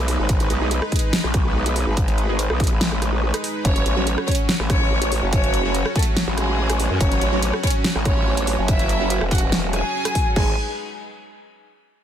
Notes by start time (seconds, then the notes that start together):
Already playing: B1 G#3 D#4 B4
0.08 open hi-hat
0.19 G#1
0.29 G#1, kick, closed hi-hat
0.40 closed hi-hat
0.50 B1, closed hi-hat
0.61 G#3 D#4 G#4
0.71 closed hi-hat
0.82 cross-stick
0.92 kick, closed hi-hat
0.96 closed hi-hat
0.99 closed hi-hat
1.13 snare, closed hi-hat
1.24 B1, cross-stick
1.34 kick, cross-stick, closed hi-hat
1.66 closed hi-hat
1.76 open hi-hat
1.87 G#1
1.97 kick, closed hi-hat
2.08 closed hi-hat
2.18 closed hi-hat
2.29 G#3 D#4 G#4
2.39 closed hi-hat
2.50 B1, cross-stick
2.60 kick, closed hi-hat
2.64 closed hi-hat
2.67 closed hi-hat
2.71 A1
2.81 snare, closed hi-hat
2.92 cross-stick
3.02 cross-stick, closed hi-hat
3.34 cross-stick, closed hi-hat
3.44 open hi-hat
3.65 F#1 F#3 C#4 F#4 C#5, kick, closed hi-hat
3.76 closed hi-hat
3.86 A1, closed hi-hat
3.97 F#3 C#4 F#4
4.07 closed hi-hat
4.18 cross-stick
4.28 C#4 C#5, kick, closed hi-hat
4.32 closed hi-hat
4.35 closed hi-hat
4.49 snare, closed hi-hat
4.60 A1, cross-stick
4.70 C#4 C#5, kick, cross-stick, closed hi-hat
5.02 closed hi-hat
5.12 open hi-hat
5.23 F#1
5.33 C#4 C#5, kick, closed hi-hat
5.44 closed hi-hat
5.54 closed hi-hat
5.65 F#3 C#4 F#4
5.75 closed hi-hat
5.86 cross-stick
5.96 A3 A4, kick, closed hi-hat
5.99 closed hi-hat
6.03 closed hi-hat
6.17 snare, closed hi-hat
6.28 A1
6.38 G#3 G#4, cross-stick, closed hi-hat
6.70 cross-stick, closed hi-hat
6.80 open hi-hat
6.91 F#2
7.01 F#1 C#4 C#5, kick, closed hi-hat
7.12 closed hi-hat
7.21 A1, closed hi-hat
7.32 F#3 C#4 F#4
7.43 closed hi-hat
7.53 cross-stick
7.63 C#4 C#5, kick, closed hi-hat
7.67 closed hi-hat
7.70 closed hi-hat
7.84 snare, closed hi-hat
7.95 A1, cross-stick
8.05 C#4 C#5, kick, cross-stick, closed hi-hat
8.37 closed hi-hat
8.47 open hi-hat
8.58 F#1
8.68 E4 E5, kick, closed hi-hat
8.79 closed hi-hat
8.89 closed hi-hat
9.00 F#3 C#4 F#4
9.10 closed hi-hat
9.21 E1, cross-stick
9.31 F#4 F#5, kick, closed hi-hat
9.35 closed hi-hat
9.38 closed hi-hat
9.42 E1
9.52 snare, closed hi-hat
9.73 G#4 G#5, cross-stick, closed hi-hat
10.05 cross-stick, closed hi-hat
10.15 kick, open hi-hat
10.36 G#1 G#3 D#4 G#4 B4 G#5, kick, crash